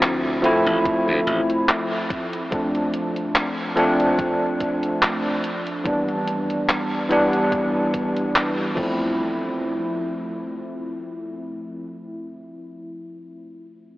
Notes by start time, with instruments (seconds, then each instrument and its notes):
Already playing: slap bass D2, tine electric piano F3 A3 C4 E4
0.02 clap, closed hi-hat
0.42 tine electric piano F3 A3 C4 E4, closed hi-hat
0.66 slap bass A1, closed hi-hat
0.86 kick, closed hi-hat
1.08 slap bass D2
1.27 slap bass A1, closed hi-hat
1.50 closed hi-hat
1.69 clap, closed hi-hat
2.11 kick, closed hi-hat
2.33 closed hi-hat
2.51 tine electric piano F3 A3 C4 D4, kick, closed hi-hat
2.75 closed hi-hat
2.94 closed hi-hat
3.16 closed hi-hat
3.35 clap, closed hi-hat
3.76 tine electric piano F3 A3 C4 D4, closed hi-hat
4.00 closed hi-hat
4.19 kick, closed hi-hat
4.61 kick, closed hi-hat
4.83 closed hi-hat
5.02 clap, closed hi-hat
5.44 closed hi-hat
5.67 closed hi-hat
5.84 tine electric piano E3 G3 B3 D4, kick, closed hi-hat
6.08 closed hi-hat
6.27 closed hi-hat
6.50 closed hi-hat
6.69 clap, closed hi-hat
7.09 tine electric piano E3 G3 B3 D4, closed hi-hat
7.33 closed hi-hat
7.52 kick, closed hi-hat
7.94 kick, closed hi-hat
8.16 closed hi-hat
8.36 clap, closed hi-hat
8.75 tine electric piano F3 A3 C4, kick, crash
8.80 tine electric piano E4